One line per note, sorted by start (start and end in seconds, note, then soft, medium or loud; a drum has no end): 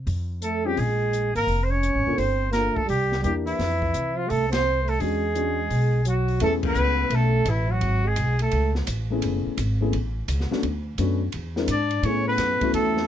0.07 0.74 F2 medium
0.07 open hi-hat soft
0.42 0.67 A3 medium
0.42 0.68 A4 medium
0.42 closed hi-hat medium
0.64 0.78 G3 medium
0.64 0.76 C4 medium
0.64 0.76 C#4 medium
0.64 0.77 F4 medium
0.64 0.80 G4 medium
0.64 0.77 G#4 medium
0.76 1.32 A#1 medium
0.76 1.34 G#3 medium
0.76 1.36 G#4 medium
0.76 open hi-hat soft
1.13 closed hi-hat soft
1.35 1.46 G#1 medium
1.35 1.65 A#3 medium
1.35 1.65 A#4 medium
1.35 open hi-hat soft
1.47 1.91 F1 medium
1.47 open hi-hat soft
1.63 1.71 C4 medium
1.63 1.72 C5 medium
1.70 2.19 C#4 medium
1.70 2.20 C#5 loud
1.83 closed hi-hat medium
1.95 2.06 G#1 medium
2.07 2.17 F1 medium
2.07 2.18 A#3 medium
2.07 2.18 D4 medium
2.07 2.18 F4 medium
2.07 2.19 A4 medium
2.17 2.72 G1 medium
2.17 2.51 C4 medium
2.17 2.52 C5 medium
2.17 open hi-hat soft
2.51 2.75 A#3 medium
2.51 2.75 A#3 soft
2.51 2.75 D4 soft
2.51 2.78 A#4 loud
2.51 snare soft
2.51 closed hi-hat soft
2.55 2.75 F4 soft
2.55 2.76 A4 medium
2.73 2.85 A3 medium
2.73 2.89 A4 medium
2.73 muted upright bass stroke soft
2.73 kick medium
2.85 3.22 C2 medium
2.85 3.20 G3 medium
2.85 open hi-hat soft
2.90 3.22 G4 medium
3.12 snare soft
3.21 3.57 E2 medium
3.21 3.32 G3 medium
3.21 3.60 A#3 medium
3.21 3.60 D4 medium
3.21 3.34 G4 medium
3.21 closed hi-hat soft
3.25 3.60 E4 medium
3.25 3.60 G4 medium
3.44 4.16 E3 medium
3.44 4.19 E4 medium
3.44 open hi-hat soft
3.59 3.92 F2 medium
3.59 snare soft
3.59 open hi-hat soft
3.82 kick medium
3.94 4.28 C3 medium
3.94 closed hi-hat medium
4.14 4.28 F3 medium
4.14 4.31 F4 medium
4.27 4.97 C2 medium
4.27 4.49 A3 medium
4.27 4.52 A4 medium
4.27 open hi-hat soft
4.49 4.86 C4 medium
4.49 4.91 C5 loud
4.49 snare medium
4.49 ride medium
4.84 5.00 A3 medium
4.84 open hi-hat soft
4.89 5.02 A4 medium
4.99 5.67 E2 medium
4.99 6.04 G#3 medium
4.99 5.21 G#3 medium
4.99 5.21 C#4 soft
4.99 5.21 D4 soft
4.99 5.22 F#4 medium
4.99 6.06 G#4 medium
4.99 open hi-hat soft
5.35 5.56 G#3 medium
5.35 5.56 C#4 soft
5.35 5.56 D4 soft
5.35 5.57 F#4 medium
5.35 closed hi-hat soft
5.70 6.37 B1 medium
5.70 open hi-hat soft
6.04 6.38 F#3 medium
6.04 6.40 F#4 medium
6.04 closed hi-hat medium
6.28 open hi-hat soft
6.40 6.75 E2 medium
6.40 6.51 A3 medium
6.40 7.39 A3 medium
6.40 7.39 B3 medium
6.40 7.40 C#4 medium
6.40 7.40 E4 medium
6.40 7.40 G#4 medium
6.40 6.53 A4 medium
6.40 ride medium
6.63 7.14 B3 medium
6.63 kick medium
6.63 crash medium
6.68 7.16 B4 loud
6.75 7.09 C#2 medium
6.75 hi-hat pedal medium
7.10 7.45 B1 medium
7.10 7.48 A3 medium
7.10 ride medium
7.15 7.51 A4 medium
7.45 7.80 A1 medium
7.45 7.71 E3 medium
7.45 hi-hat pedal medium
7.45 ride medium
7.50 7.73 E4 medium
7.70 8.06 F#3 medium
7.70 8.09 F#4 medium
7.81 8.16 G#1 medium
7.81 ride medium
8.05 8.39 G#3 medium
8.05 8.41 G#4 medium
8.16 8.51 B1 medium
8.16 hi-hat pedal medium
8.16 ride medium
8.39 8.73 A3 medium
8.39 8.74 A4 medium
8.39 ride soft
8.51 8.86 C#2 medium
8.51 ride medium
8.75 snare soft
8.87 9.22 A1 medium
8.87 hi-hat pedal medium
8.87 ride medium
9.10 9.55 A3 medium
9.10 9.56 B3 medium
9.10 9.56 C#4 medium
9.10 9.56 E4 medium
9.10 9.56 G#4 medium
9.22 9.44 F#1 medium
9.22 ride medium
9.46 muted upright bass stroke soft
9.57 9.92 G#1 medium
9.57 hi-hat pedal medium
9.57 ride medium
9.81 9.92 A3 medium
9.81 9.92 B3 medium
9.81 9.92 C#4 medium
9.81 9.92 E4 medium
9.81 9.92 G#4 medium
9.93 10.27 A1 medium
9.93 ride medium
10.28 10.49 C#2 medium
10.28 hi-hat pedal medium
10.28 ride medium
10.40 snare soft
10.51 10.62 A3 medium
10.51 10.62 B3 medium
10.51 10.62 C#4 medium
10.51 10.62 D4 medium
10.51 10.63 F#4 medium
10.51 muted upright bass stroke soft
10.51 snare soft
10.63 10.97 D2 medium
10.63 ride medium
10.98 11.32 F#2 medium
10.98 11.19 A3 medium
10.98 11.19 B3 medium
10.98 11.19 C#4 medium
10.98 11.19 D4 medium
10.98 11.20 F#4 medium
10.98 hi-hat pedal soft
10.98 ride medium
11.32 11.67 E2 medium
11.32 ride medium
11.56 11.68 G#3 medium
11.56 11.67 C4 medium
11.56 11.68 D4 medium
11.56 11.68 E4 medium
11.56 11.68 A#4 medium
11.56 snare soft
11.68 12.02 G#2 medium
11.68 12.07 D4 medium
11.68 12.07 D5 medium
11.68 hi-hat pedal medium
11.68 ride medium
11.90 ride soft
12.03 12.37 A2 medium
12.03 12.58 A3 medium
12.03 12.58 B3 medium
12.03 12.58 C#4 medium
12.03 12.26 C#4 medium
12.03 12.58 E4 medium
12.03 12.58 G#4 medium
12.03 12.27 C#5 loud
12.03 ride medium
12.27 12.71 B3 medium
12.27 12.72 B4 medium
12.38 12.60 F#2 medium
12.38 snare soft
12.38 hi-hat pedal medium
12.38 ride medium
12.61 13.07 A3 medium
12.61 13.07 B3 medium
12.61 13.07 C#4 medium
12.61 13.07 E4 medium
12.61 13.07 F#4 medium
12.61 muted upright bass stroke soft
12.61 kick medium
12.61 ride medium
12.73 13.07 E2 medium
12.73 13.07 A3 medium
12.73 13.07 A4 medium
12.73 ride medium
12.97 snare soft